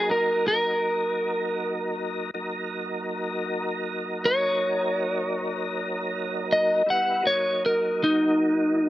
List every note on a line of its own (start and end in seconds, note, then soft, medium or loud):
0.00 2.31 F#3 medium
0.00 2.30 A#3 medium
0.00 2.31 D#4 medium
0.00 0.10 G#4 medium
0.00 2.31 A#4 medium
0.11 0.47 A#4 medium
0.48 1.94 A#4 medium
2.34 6.83 F#3 medium
2.34 6.83 A#3 medium
2.34 6.82 D#4 medium
2.34 6.83 A#4 medium
4.25 6.46 C#5 medium
6.53 6.88 D#5 medium
6.86 7.25 G3 medium
6.86 7.25 B3 medium
6.86 7.24 E4 medium
6.90 7.25 F#5 medium
7.22 8.89 F#3 medium
7.22 8.89 A#3 medium
7.22 8.89 D#4 medium
7.27 7.62 C#5 medium
7.66 8.01 A#4 medium
8.04 8.89 D#4 medium